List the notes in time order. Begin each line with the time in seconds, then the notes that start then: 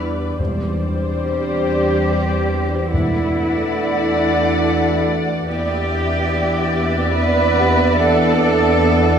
Already playing: E2 E3 G3 B3 D4 B4 D5
0.39 E2 E3 G3 C4 D4 C5 D5
1.24 G4
2.10 C5
2.93 E2 A3 D4 E4 F#4 D5 F#5
5.46 E2 E3 B3 D4 E4 G4 D5 E5
5.91 E5
7.16 B4
7.59 G4 F#5
8.00 A4